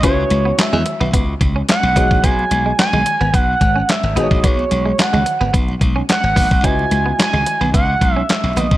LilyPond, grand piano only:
\new Staff \with { instrumentName = "Grand piano" } { \time 4/4 \key cis \minor \tempo 4 = 109 <cis' e' fis' b'>2.~ <cis' e' fis' b'>8 <dis' fis' gis' cis''>8~ | <dis' fis' gis' cis''>2.~ <dis' fis' gis' cis''>8 <dis' fis' gis' bis' cis''>8~ | <dis' fis' gis' bis' cis''>2.~ <dis' fis' gis' bis' cis''>8 r8 | <e' fis' b' dis''>1 | }